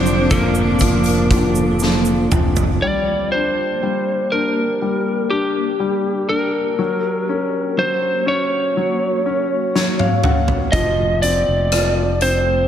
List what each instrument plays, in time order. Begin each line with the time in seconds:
Already playing: fingered electric bass F1, cello section D3 D4, ambient pad D3 F3 A#3 C4 F4, grand piano F3, lead electric guitar C4 C5
0.06 shaker
0.30 grand piano F3, lead electric guitar A#3 A#4, kick, closed hi-hat, shaker
0.55 shaker
0.79 grand piano F3, kick, closed hi-hat, shaker
1.04 closed hi-hat, shaker
1.31 grand piano F3, kick, closed hi-hat
1.55 lead electric guitar A4, shaker
1.79 grand piano F3, snare, shaker
2.05 shaker
2.31 fingered electric bass F1, grand piano F3, mid tom, shaker
2.56 floor tom, shaker
2.82 grand piano G3, ambient pad A#3 D4 G4, lead electric guitar D5
3.32 grand piano D4, lead electric guitar C5
3.83 grand piano G3
4.32 grand piano D4, lead electric guitar A#4
4.82 grand piano G3
5.30 grand piano D4, lead electric guitar G4
5.80 grand piano G3
6.28 grand piano D4, lead electric guitar A#4
6.78 grand piano F#3, ambient pad A#3 C#4 F#4
7.29 grand piano C#4
7.77 grand piano F#3, lead electric guitar C5
8.26 grand piano C#4, lead electric guitar C#5
8.77 grand piano F#3
9.26 grand piano C#4
9.75 grand piano F#3 C#5, snare
9.99 grand piano F5, high tom
10.24 grand piano C#4 F#5, mid tom
10.48 floor tom
10.72 fingered electric bass F1, grand piano F3, ambient pad A3 C4 F4, lead electric guitar D#5, kick, closed hi-hat
11.22 grand piano C4, lead electric guitar D5, closed hi-hat
11.48 fingered electric bass F1
11.72 grand piano F3, cross-stick, closed hi-hat
12.21 grand piano C4, lead electric guitar C5, closed hi-hat